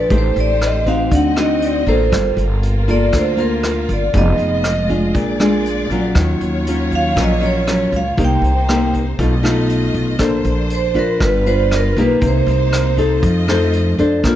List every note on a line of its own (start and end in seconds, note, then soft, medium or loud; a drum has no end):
0.00 0.13 B4 medium
0.09 0.34 A1 loud
0.09 1.10 A3 medium
0.09 0.86 A3 medium
0.09 0.82 D#4 medium
0.09 1.10 G4 medium
0.09 0.83 G4 medium
0.09 1.10 C5 medium
0.09 0.83 C5 medium
0.09 kick medium
0.09 closed hi-hat soft
0.18 0.39 C5 medium
0.36 1.08 A1 medium
0.36 closed hi-hat soft
0.40 0.63 D5 medium
0.61 cross-stick medium
0.61 closed hi-hat soft
0.65 0.88 D#5 medium
0.86 1.33 C4 medium
0.86 1.33 D#4 medium
0.86 1.33 F#4 medium
0.86 1.12 F5 medium
0.86 kick soft
0.86 closed hi-hat soft
1.11 1.83 D2 medium
1.11 2.10 D3 medium
1.11 2.11 C4 medium
1.11 2.11 F#4 medium
1.11 2.12 D#5 medium
1.11 kick medium
1.11 closed hi-hat soft
1.15 1.38 F#5 medium
1.36 1.83 C4 medium
1.36 1.83 D#4 medium
1.36 1.83 F#4 medium
1.36 1.62 D#5 medium
1.36 cross-stick medium
1.36 closed hi-hat soft
1.62 1.88 D5 medium
1.62 closed hi-hat soft
1.87 2.10 A1 medium
1.87 2.84 A#3 medium
1.87 2.84 F4 medium
1.87 2.85 A4 medium
1.87 2.35 C5 medium
1.87 kick soft
1.87 closed hi-hat soft
2.11 2.36 G1 loud
2.11 3.10 G3 medium
2.11 4.12 A#3 medium
2.11 5.12 F4 medium
2.11 kick medium
2.11 cross-stick medium
2.11 closed hi-hat soft
2.37 3.09 G1 medium
2.37 closed hi-hat soft
2.63 closed hi-hat soft
2.88 3.35 A#3 medium
2.88 3.35 F4 medium
2.88 3.35 A4 medium
2.88 3.14 D5 medium
2.88 kick soft
2.88 closed hi-hat soft
3.12 3.85 D2 loud
3.12 4.11 D3 medium
3.12 kick medium
3.12 cross-stick medium
3.12 closed hi-hat soft
3.18 3.40 C5 medium
3.37 4.09 A#3 medium
3.37 4.10 F4 medium
3.37 3.86 A#4 medium
3.37 closed hi-hat soft
3.63 cross-stick medium
3.63 closed hi-hat soft
3.89 4.12 G1 medium
3.89 kick soft
3.89 closed hi-hat soft
3.93 4.16 D5 medium
4.13 4.37 F1 loud
4.13 5.12 F3 medium
4.13 5.14 G#3 medium
4.13 4.64 B3 medium
4.13 4.64 D#4 medium
4.13 4.64 G#4 medium
4.13 5.14 D#5 medium
4.13 kick medium
4.13 closed hi-hat soft
4.18 4.88 D#5 medium
4.38 5.10 F1 medium
4.38 closed hi-hat soft
4.64 cross-stick medium
4.64 closed hi-hat soft
4.89 5.36 G#3 medium
4.89 5.36 D4 medium
4.89 5.36 F4 medium
4.89 kick soft
4.89 closed hi-hat soft
5.14 5.86 A#1 medium
5.14 6.13 A#2 medium
5.14 6.15 A#3 medium
5.14 6.15 G#4 medium
5.14 6.15 D5 medium
5.14 kick medium
5.14 closed hi-hat soft
5.39 5.86 G#3 medium
5.39 5.86 D4 medium
5.39 5.87 F4 medium
5.39 cross-stick medium
5.39 closed hi-hat soft
5.65 closed hi-hat soft
5.90 6.14 A#1 medium
5.90 6.67 F#3 medium
5.90 6.67 C#4 medium
5.90 6.67 F4 medium
5.90 kick soft
5.90 closed hi-hat soft
6.15 6.39 D#2 medium
6.15 7.14 D#3 medium
6.15 8.16 F#3 medium
6.15 8.16 F4 medium
6.15 8.16 C#5 medium
6.15 kick medium
6.15 cross-stick medium
6.15 closed hi-hat soft
6.41 7.13 D#2 medium
6.41 closed hi-hat soft
6.67 7.14 F#3 soft
6.67 7.14 C#4 medium
6.67 7.14 F4 medium
6.67 closed hi-hat soft
6.92 7.18 F5 loud
6.92 kick soft
6.92 closed hi-hat soft
7.16 7.89 A#1 loud
7.16 8.15 A#2 medium
7.16 7.31 F#3 medium
7.16 7.31 C#4 medium
7.16 7.31 F4 medium
7.16 kick medium
7.16 cross-stick medium
7.16 closed hi-hat soft
7.22 7.44 D#5 medium
7.40 7.62 F#3 medium
7.40 7.63 C#4 medium
7.40 7.63 F4 medium
7.40 closed hi-hat soft
7.46 7.91 C#5 medium
7.67 8.01 F#3 soft
7.67 8.01 C#4 medium
7.67 8.01 F4 medium
7.67 cross-stick medium
7.67 closed hi-hat soft
7.92 8.16 C#2 medium
7.92 kick soft
7.92 closed hi-hat soft
7.96 8.19 F5 medium
8.17 8.41 C2 loud
8.17 9.16 C3 medium
8.17 8.50 A#3 medium
8.17 9.18 A#3 medium
8.17 8.51 D#4 medium
8.17 9.18 D#4 medium
8.17 8.51 G4 medium
8.17 9.18 C5 medium
8.17 kick medium
8.17 closed hi-hat soft
8.25 8.93 G5 medium
8.42 9.14 C2 medium
8.42 closed hi-hat soft
8.69 9.02 A#3 medium
8.69 9.03 D#4 medium
8.69 9.03 G4 medium
8.69 cross-stick medium
8.69 closed hi-hat soft
8.94 kick soft
8.94 closed hi-hat soft
9.19 9.90 B1 medium
9.19 10.17 B2 medium
9.19 9.34 A3 medium
9.19 9.34 D#4 medium
9.19 10.19 F4 medium
9.19 9.34 F4 medium
9.19 10.19 D#5 medium
9.19 kick medium
9.19 closed hi-hat soft
9.43 10.15 A3 medium
9.43 10.15 D#4 medium
9.43 10.16 F4 medium
9.43 cross-stick medium
9.43 closed hi-hat soft
9.70 closed hi-hat soft
9.94 10.18 B1 medium
9.94 kick soft
9.94 closed hi-hat soft
10.19 10.43 A#1 loud
10.19 11.18 A#3 medium
10.19 10.91 D4 medium
10.19 11.20 D4 medium
10.19 10.91 A4 medium
10.19 11.20 C5 medium
10.19 10.92 C5 medium
10.19 kick medium
10.19 cross-stick medium
10.19 closed hi-hat soft
10.45 11.17 A#1 medium
10.45 closed hi-hat soft
10.70 closed hi-hat soft
10.75 10.97 C5 medium
10.94 11.41 D4 medium
10.94 11.42 F4 medium
10.94 11.42 B4 medium
10.94 kick soft
10.94 closed hi-hat soft
10.99 11.22 A#4 medium
11.19 11.92 G1 loud
11.19 12.20 G3 medium
11.19 11.97 G3 medium
11.19 12.20 F4 medium
11.19 12.20 B4 medium
11.19 kick medium
11.19 cross-stick medium
11.19 closed hi-hat soft
11.24 11.47 B4 medium
11.46 11.93 D4 medium
11.46 11.93 F4 medium
11.46 11.93 B4 medium
11.46 11.71 C5 loud
11.46 closed hi-hat soft
11.71 cross-stick medium
11.71 closed hi-hat soft
11.77 11.98 A#4 medium
11.97 12.20 B1 medium
11.97 12.94 A#3 medium
11.97 12.94 D#4 medium
11.97 12.94 G4 medium
11.97 12.23 B4 medium
11.97 kick soft
11.97 closed hi-hat soft
12.21 12.45 C2 loud
12.21 13.20 C3 medium
12.21 13.22 A#3 medium
12.21 13.22 D#4 medium
12.21 13.22 C5 medium
12.21 kick medium
12.21 closed hi-hat soft
12.27 12.96 C5 medium
12.47 13.19 C2 medium
12.47 closed hi-hat soft
12.73 cross-stick medium
12.73 closed hi-hat soft
12.98 13.44 D#4 medium
12.98 13.45 A4 medium
12.98 13.44 C5 medium
12.98 kick soft
12.98 closed hi-hat soft
13.22 13.95 F2 loud
13.22 14.21 F3 medium
13.22 14.23 A3 medium
13.22 14.23 F4 medium
13.22 14.23 D#5 medium
13.22 kick medium
13.22 closed hi-hat soft
13.48 13.95 D#4 medium
13.48 13.95 A4 medium
13.48 13.95 C5 medium
13.48 cross-stick medium
13.48 closed hi-hat soft
13.73 closed hi-hat soft
13.98 14.22 F2 medium
13.98 14.36 D4 medium
13.98 14.36 A4 medium
13.98 14.36 C5 medium
13.98 kick soft
13.98 closed hi-hat soft
14.23 14.36 A#1 medium
14.23 14.36 A#3 medium
14.23 14.36 F4 loud
14.23 kick medium
14.23 cross-stick medium
14.23 closed hi-hat soft